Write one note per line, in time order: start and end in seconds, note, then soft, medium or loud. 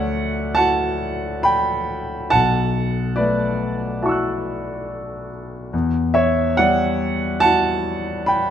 0.00 2.29 D2 medium
0.00 1.10 A3 soft
0.00 2.35 C#5 medium
0.00 0.54 D5 medium
0.00 2.35 E5 medium
0.00 0.55 F#5 medium
0.55 2.28 E4 soft
0.55 2.29 F#4 soft
0.55 1.40 F#5 medium
0.55 1.43 A5 loud
1.43 2.29 G5 medium
1.43 2.32 B5 medium
2.30 5.69 B1 medium
2.30 3.14 F#5 medium
2.30 3.17 A5 loud
3.16 4.53 A3 soft
3.16 5.26 B4 medium
3.16 5.29 D5 medium
4.03 5.69 E4 soft
4.03 5.69 F#4 soft
4.03 5.69 A5 soft
4.03 5.71 C#6 soft
4.09 5.72 E6 soft
4.09 5.73 F#6 soft
5.73 8.50 E2 medium
6.14 6.55 C#5 medium
6.14 6.58 E5 medium
6.57 7.93 G3 soft
6.57 7.39 D5 medium
6.57 7.40 F#5 medium
7.40 8.50 E4 soft
7.40 8.50 F#4 soft
7.40 8.24 F#5 medium
7.40 8.27 A5 loud
8.26 8.50 G5 medium
8.26 8.50 B5 medium